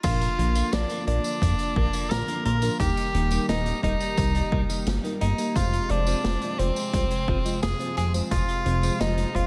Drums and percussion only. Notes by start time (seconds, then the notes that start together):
0.03 kick, closed hi-hat, crash, tambourine
0.21 closed hi-hat, tambourine
0.39 closed hi-hat
0.55 closed hi-hat, tambourine
0.73 snare, closed hi-hat, tambourine
0.89 closed hi-hat, tambourine
1.07 closed hi-hat
1.24 closed hi-hat, tambourine
1.42 kick, closed hi-hat, tambourine
1.59 closed hi-hat, tambourine
1.76 kick
1.93 closed hi-hat, tambourine
2.11 snare, closed hi-hat, tambourine
2.28 closed hi-hat, tambourine
2.45 closed hi-hat
2.62 closed hi-hat, tambourine
2.80 kick, closed hi-hat, tambourine
2.97 closed hi-hat, tambourine
3.14 closed hi-hat
3.30 closed hi-hat, tambourine
3.49 snare, closed hi-hat, tambourine
3.66 closed hi-hat, tambourine
3.83 kick, closed hi-hat
4.00 closed hi-hat, tambourine
4.17 kick, closed hi-hat, tambourine
4.35 closed hi-hat, tambourine
4.52 kick
4.70 closed hi-hat, tambourine
4.86 snare, closed hi-hat, tambourine
5.04 closed hi-hat, tambourine
5.21 closed hi-hat
5.38 closed hi-hat, tambourine
5.56 kick, closed hi-hat, tambourine
5.73 closed hi-hat, tambourine
5.89 closed hi-hat
6.07 closed hi-hat, tambourine
6.24 snare, closed hi-hat, tambourine
6.42 closed hi-hat, tambourine
6.59 closed hi-hat
6.76 closed hi-hat, tambourine
6.94 kick, closed hi-hat, tambourine
7.10 closed hi-hat, tambourine
7.28 kick
7.45 closed hi-hat, tambourine
7.63 snare, closed hi-hat, tambourine
7.79 closed hi-hat, tambourine
7.97 closed hi-hat
8.14 closed hi-hat, tambourine
8.31 kick, closed hi-hat, tambourine
8.49 closed hi-hat, tambourine
8.66 closed hi-hat
8.83 closed hi-hat, tambourine
9.00 snare, closed hi-hat, tambourine
9.17 closed hi-hat, tambourine
9.35 kick, closed hi-hat